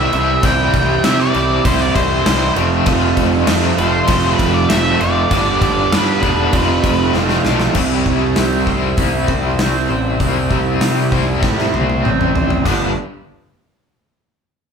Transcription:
Already playing: C3 E3 G3 C4 E4
0.00 E5
0.11 C2 C3 E3 G3 C4 E4, crash
0.43 C2 C3 E3 G3 C4 E4 G5, kick, crash
0.73 C2, kick, crash
1.03 C3 E3 G3 C4 E4 E5, snare, crash
1.20 D5, snare
1.33 C2 C3 E3 G3 C4 E4, crash
1.63 C2 C3 E3 G3 C4 E4 C5, kick, crash
1.81 D5
1.96 C2 C5, kick, crash
2.24 C2 C3 E3 G3 C4 E4, snare, crash
2.55 F1 F2 C3 F3 A3 C4 F4, crash
2.86 F1 F2 C3 F3 A3 C4 F4, kick, crash
3.17 F1, kick, crash
3.47 F2 C3 F3 A3 C4 F4, snare, crash
3.78 F1 F2 C3 F3 A3 C4 F4 C5, crash
4.07 F1 F2 C3 F3 A3 C4 F4, kick, crash
4.33 B4
4.39 F1, kick, crash
4.54 D5
4.69 F1 F2 C3 F3 A3 C4 F4 E5, snare, crash
4.99 F1 F2 C3 F3 A3 C4 F4 D5, crash
5.30 G1 G2 D3 G3 B3 D4 G4, kick, crash
5.61 G1 D5, kick, crash
5.92 G2 D3 G3 B3 D4 G4 B4, snare, crash
6.22 E1 G2 D3 G3 B3 D4 G4, kick, crash
6.53 F1 F2 C3 F3 A3 C4 F4, kick, crash
6.84 F1, kick, crash
7.13 F1 F2 C3 F3 A3 C4 F4, snare
7.29 snare
7.45 B1 F2 C3 F3 A3 C4 F4, snare
7.60 snare
7.75 C2 C3 G3 C4 E4, kick, crash
8.06 C2 G3, kick
8.36 C2 C4, snare, open hi-hat
8.66 C3 G3 C4 E4 C5, kick
8.97 C2 E4, kick, open hi-hat
9.28 C2 C5, kick
9.58 C2 C4, snare, open hi-hat
9.89 A1 C5
10.20 C2 C3 G3 C4 E4, kick, open hi-hat
10.51 C2 G3, kick
10.81 C3 C4, snare, open hi-hat
11.11 C2 C3 G3 C4 E4 C5, kick
11.42 A2 E4, kick, snare
11.59 snare
11.73 C2 C5, high tom
11.90 high tom
12.04 A1 C4, mid tom
12.21 mid tom
12.35 C5, floor tom
12.50 floor tom
12.64 G1 G2 D3 G3 B3 D4 G4, kick, splash

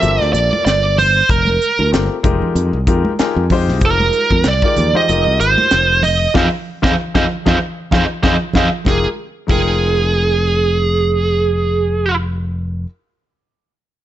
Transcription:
Already playing: E5
0.01 G1 C4 F4 G4 A4 A#4, closed hi-hat
0.21 D2, snare
0.33 A#1 D5, closed hi-hat
0.53 high conga
0.65 G1 D5, snare, closed hi-hat
0.98 C5, open hi-hat, low conga
1.29 F1 A#4, kick, closed hi-hat
1.46 high conga
1.62 closed hi-hat
1.79 D2, high conga
1.92 G1 A3 C4 F4 G4 A#4, snare, closed hi-hat
2.23 F1 G#3 D#4 F4 G4 A#4, kick, closed hi-hat, low conga
2.42 low conga
2.55 F2, closed hi-hat
2.73 C2
2.87 F2 G#3 D#4 F4 G4 A#4, kick, closed hi-hat
3.05 high conga
3.19 G#3 D#4 F4 G4 A#4 G#5, muted fingered electric bass stroke, snare, closed hi-hat
3.36 F2
3.50 G#3 D#4 F4 G4 C5 D#5, kick, open hi-hat, low conga
3.68 C2, snare
3.81 F1, kick, closed hi-hat
3.85 A#4
4.00 high conga
4.13 closed hi-hat
4.31 F2, kick, high conga
4.44 C2, snare, closed hi-hat
4.48 D5
4.62 G#3 D#4 F4 G4 A#4, muted fingered electric bass stroke, kick
4.76 D#2, closed hi-hat, low conga
4.93 G#3 D#4 F4 G4 C5 D#5, low conga
5.09 F1 G#3 D#4 F4 G4 A#4, closed hi-hat
5.27 C2
5.40 G#1 C5, closed hi-hat
5.58 high conga
5.71 F1, snare, closed hi-hat
6.03 D#5, open hi-hat, low conga
6.34 F2 D#4 F4 G#4 C5 D#5 F5, kick, snare, low conga
6.82 F2 D#4 F4 G#4 C5 D#5 F5, kick, snare, low conga
7.14 F2 D#4 F4 G#4 C5 D#5 F5, kick, snare, low conga
7.45 F2 D#4 F4 G#4 C5 D#5 F5, kick, snare, low conga
7.91 F2 D#4 F4 G#4 C5 D#5 F5, kick, snare, low conga
8.23 F2 D#4 F4 G#4 C5 D#5 F5, kick, snare, low conga
8.53 F2 D#4 F4 G#4 C5 D#5 F5, kick, snare, low conga
8.84 F1 G#3 D#4 F4 G4 G#4, kick, snare, high conga
8.89 A#4
9.47 F1 G#3 D#4 F4 G#4 G5, kick, crash, high conga
9.52 A#4

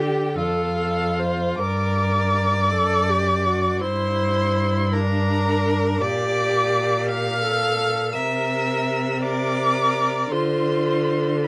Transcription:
Already playing: D3 G4 G5
0.00 G4
0.35 F2 F4 A4 F5
0.78 A4
1.19 C5
1.58 G2 A#4 D5 D6
2.71 F#2 A4
3.09 G4
3.46 F#4
3.80 G2 E4 C5 C6
4.92 D4 A#4 A#5
6.01 A#2 G4 D5 D6
7.06 F5 F6
7.44 A4
8.13 C3 A#4 E5 E6
9.21 A#4 D5 D6
10.31 D3 F4 C5 C6
11.44 B5

